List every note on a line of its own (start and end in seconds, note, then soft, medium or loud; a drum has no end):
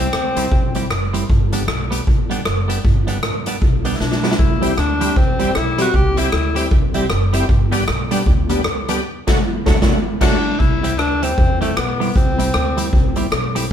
0.00 0.91 C4 loud
0.13 0.33 D2 medium
0.13 cross-stick loud
0.36 0.49 C2 medium
0.36 0.45 G3 medium
0.36 0.46 C4 medium
0.36 0.46 E4 medium
0.36 0.46 G4 medium
0.36 closed hi-hat loud
0.52 0.85 B1 medium
0.52 kick loud
0.75 0.84 G3 loud
0.75 0.84 C4 loud
0.75 0.85 E4 loud
0.75 0.85 G4 loud
0.75 closed hi-hat medium
0.90 1.23 F#1 medium
0.90 cross-stick loud
1.13 1.23 G3 medium
1.13 1.23 C4 medium
1.13 1.23 E4 medium
1.13 1.23 G4 medium
1.13 closed hi-hat loud
1.29 1.62 G1 loud
1.29 kick loud
1.53 1.62 G3 medium
1.53 1.62 B3 medium
1.53 1.62 D4 medium
1.53 1.62 G4 medium
1.53 closed hi-hat loud
1.67 2.01 B1 loud
1.67 cross-stick loud
1.91 2.00 G3 medium
1.91 2.00 B3 medium
1.91 2.01 D4 medium
1.91 2.01 G4 medium
1.91 closed hi-hat medium
2.07 2.40 A1 loud
2.07 kick loud
2.30 2.39 G3 medium
2.30 2.40 B3 loud
2.30 2.40 D4 medium
2.30 2.40 G4 loud
2.30 closed hi-hat medium
2.45 2.79 F#1 medium
2.45 cross-stick loud
2.68 2.78 G3 medium
2.68 2.78 B3 medium
2.68 2.78 D4 medium
2.68 2.78 G4 medium
2.68 closed hi-hat loud
2.84 3.17 G1 loud
2.84 kick loud
3.07 3.17 G3 medium
3.07 3.17 B3 medium
3.07 3.17 D4 loud
3.07 3.17 G4 medium
3.07 closed hi-hat loud
3.23 3.56 A1 medium
3.23 cross-stick loud
3.46 3.56 G3 medium
3.46 3.56 B3 medium
3.46 3.56 D4 medium
3.46 3.56 G4 medium
3.46 closed hi-hat loud
3.62 3.95 B1 medium
3.62 kick loud
3.85 3.94 G3 medium
3.85 3.94 B3 medium
3.85 3.95 D4 loud
3.85 3.95 G4 loud
3.85 closed hi-hat medium
3.95 4.02 E4 medium
4.00 4.33 B1 medium
4.00 4.38 D4 medium
4.00 snare medium
4.12 snare medium
4.23 4.33 G3 medium
4.23 4.33 B3 loud
4.23 4.33 D4 medium
4.23 4.33 G4 medium
4.23 snare medium
4.31 snare medium
4.39 4.72 C2 loud
4.39 4.80 E4 medium
4.39 kick loud
4.61 4.71 G3 medium
4.61 4.74 G3 medium
4.61 4.71 C4 loud
4.61 4.74 C4 medium
4.61 4.72 E4 loud
4.61 4.74 E4 medium
4.61 4.72 G4 loud
4.61 4.74 G4 loud
4.61 closed hi-hat loud
4.78 5.11 D2 medium
4.78 5.18 D4 medium
4.78 cross-stick loud
5.00 5.12 G3 medium
5.00 5.10 G3 medium
5.00 5.12 C4 medium
5.00 5.10 C4 medium
5.00 5.13 E4 medium
5.00 5.10 E4 medium
5.00 5.13 G4 loud
5.00 5.11 G4 medium
5.00 closed hi-hat loud
5.16 5.50 C2 medium
5.16 5.58 C4 medium
5.16 5.21 E4 soft
5.16 5.21 G4 soft
5.16 kick loud
5.39 5.51 G3 medium
5.39 5.49 G3 medium
5.39 5.51 C4 medium
5.39 5.49 C4 medium
5.39 5.51 E4 medium
5.39 5.49 E4 medium
5.39 5.52 G4 loud
5.39 5.50 G4 medium
5.39 closed hi-hat medium
5.55 5.88 B1 medium
5.55 5.80 E4 loud
5.55 cross-stick loud
5.78 5.90 G3 medium
5.78 5.88 G3 medium
5.78 5.90 C4 medium
5.78 5.88 C4 medium
5.78 5.90 E4 medium
5.78 5.88 E4 medium
5.78 5.97 F#4 loud
5.78 5.90 G4 loud
5.78 5.88 G4 loud
5.78 closed hi-hat loud
5.94 6.27 C2 loud
5.94 6.20 G4 loud
5.94 kick loud
6.17 6.26 G3 medium
6.17 6.29 G3 medium
6.17 6.27 C4 medium
6.17 6.29 C4 medium
6.17 6.29 E4 medium
6.17 6.27 E4 medium
6.17 6.72 E4 loud
6.17 6.29 G4 loud
6.17 6.27 G4 medium
6.17 closed hi-hat loud
6.32 6.66 D2 medium
6.32 cross-stick loud
6.55 6.65 G3 medium
6.55 6.68 G3 medium
6.55 6.65 C4 medium
6.55 6.68 C4 medium
6.55 6.65 E4 medium
6.55 6.68 E4 medium
6.55 6.65 G4 loud
6.55 6.68 G4 loud
6.55 closed hi-hat loud
6.71 7.05 C2 medium
6.71 6.77 E4 soft
6.71 6.77 G4 soft
6.71 kick loud
6.94 7.06 G3 medium
6.94 7.04 G3 medium
6.94 7.06 C4 medium
6.94 7.04 C4 medium
6.94 7.06 E4 medium
6.94 7.04 E4 medium
6.94 7.07 G4 loud
6.94 7.04 G4 medium
6.94 closed hi-hat medium
7.10 7.43 F#1 loud
7.10 cross-stick loud
7.33 7.45 G3 medium
7.33 7.42 G3 medium
7.33 7.45 C4 medium
7.33 7.43 C4 medium
7.33 7.45 E4 medium
7.33 7.43 E4 medium
7.33 7.46 G4 loud
7.33 7.43 G4 loud
7.33 closed hi-hat loud
7.49 7.82 G1 loud
7.49 kick loud
7.72 7.84 G3 medium
7.72 7.81 G3 medium
7.72 7.84 B3 medium
7.72 7.81 B3 medium
7.72 7.84 D4 medium
7.72 7.82 D4 medium
7.72 7.84 G4 loud
7.72 7.82 G4 medium
7.72 closed hi-hat loud
7.88 8.21 B1 medium
7.88 cross-stick loud
8.11 8.20 G3 medium
8.11 8.23 G3 loud
8.11 8.23 B3 medium
8.11 8.20 B3 medium
8.11 8.21 D4 medium
8.11 8.23 D4 medium
8.11 8.23 G4 loud
8.11 8.21 G4 medium
8.11 closed hi-hat loud
8.26 8.60 D2 medium
8.26 8.32 D4 soft
8.26 8.31 G4 soft
8.26 kick loud
8.49 8.61 G3 medium
8.49 8.59 G3 medium
8.49 8.61 B3 medium
8.49 8.59 B3 loud
8.49 8.62 D4 medium
8.49 8.59 D4 loud
8.49 8.62 G4 loud
8.49 8.59 G4 loud
8.49 closed hi-hat medium
8.64 8.99 C#2 medium
8.64 cross-stick loud
8.89 8.98 G3 medium
8.89 9.00 G3 loud
8.89 8.98 B3 medium
8.89 9.01 B3 medium
8.89 8.98 D4 medium
8.89 9.01 D4 medium
8.89 8.98 G4 loud
8.89 9.01 G4 loud
8.89 closed hi-hat loud
9.27 9.38 D2 loud
9.27 9.38 F#3 loud
9.27 9.38 A3 loud
9.27 9.39 D4 loud
9.27 9.39 F#4 loud
9.27 kick loud
9.27 snare loud
9.27 crash medium
9.66 9.77 D2 loud
9.66 9.77 F#3 loud
9.66 9.77 F#3 medium
9.66 9.77 A3 loud
9.66 9.77 A3 medium
9.66 9.77 D4 medium
9.66 9.78 D4 medium
9.66 9.77 F#4 loud
9.66 9.78 F#4 medium
9.66 kick loud
9.66 snare loud
9.82 9.98 D2 loud
9.82 9.98 F#3 loud
9.82 9.98 A3 loud
9.82 9.98 D4 loud
9.82 9.98 F#4 loud
9.82 9.99 F#4 loud
9.82 kick loud
9.82 snare loud
10.21 10.37 D2 loud
10.21 10.37 F#3 loud
10.21 10.37 A3 loud
10.21 10.61 D4 loud
10.21 10.37 D4 loud
10.21 10.37 F#4 loud
10.21 10.38 F#4 loud
10.21 kick loud
10.21 snare loud
10.21 crash medium
10.59 10.99 C2 loud
10.59 11.00 E4 loud
10.59 kick loud
10.83 10.92 G3 medium
10.83 10.93 C4 medium
10.83 10.93 E4 loud
10.83 10.93 G4 loud
10.83 closed hi-hat loud
10.98 11.32 D2 medium
10.98 11.25 D4 medium
10.98 cross-stick loud
11.22 11.31 G3 medium
11.22 11.61 C4 loud
11.22 11.32 C4 medium
11.22 11.32 E4 medium
11.22 11.32 G4 medium
11.22 closed hi-hat loud
11.38 11.71 E2 medium
11.38 kick loud
11.61 11.70 G3 loud
11.61 11.79 A3 medium
11.61 11.70 C4 medium
11.61 11.70 E4 medium
11.61 11.71 G4 loud
11.61 closed hi-hat medium
11.77 12.10 B1 medium
11.77 12.17 B3 medium
11.77 cross-stick loud
12.00 12.09 G3 medium
12.00 12.09 C4 medium
12.00 12.09 E4 medium
12.00 12.10 G4 medium
12.00 open hi-hat medium
12.16 12.48 C2 loud
12.16 13.32 C4 medium
12.16 kick loud
12.16 hi-hat pedal medium
12.38 12.48 G3 medium
12.38 12.48 C4 medium
12.38 12.48 E4 medium
12.38 12.48 G4 medium
12.38 closed hi-hat loud
12.54 12.88 D2 loud
12.54 cross-stick loud
12.77 12.86 G3 medium
12.77 12.87 C4 medium
12.77 12.87 E4 medium
12.77 12.87 G4 loud
12.77 closed hi-hat medium
12.93 13.26 C2 medium
12.93 kick loud
13.16 13.25 G3 medium
13.16 13.25 C4 medium
13.16 13.26 E4 medium
13.16 13.26 G4 loud
13.16 closed hi-hat medium
13.32 13.65 B1 loud
13.32 cross-stick loud
13.55 13.64 G3 medium
13.55 13.64 C4 medium
13.55 13.65 E4 medium
13.55 13.65 G4 loud
13.55 closed hi-hat loud